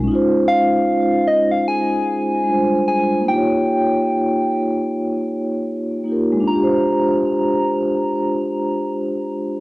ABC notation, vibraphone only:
X:1
M:4/4
L:1/8
Q:"Swing 16ths" 1/4=75
K:Bbdor
V:1 name="Vibraphone"
[A,DEFc]6 [G,A,=DFc]2 | [B,EFGd]6- [B,EFGd] [B,EFGB] | [A,=DFGc]8 |]